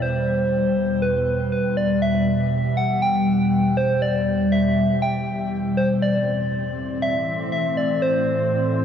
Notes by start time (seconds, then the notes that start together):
Already playing: E2 B2 G3
0.02 C5
1.02 B4
1.52 B4
1.77 D5
2.02 E5
2.77 F#5
3.02 G5
3.77 C5
4.02 D5
4.52 E5
5.02 G5
5.77 C5
6.02 A2 E3 C4 D5
7.02 E5
7.52 E5
7.77 D5
8.02 C5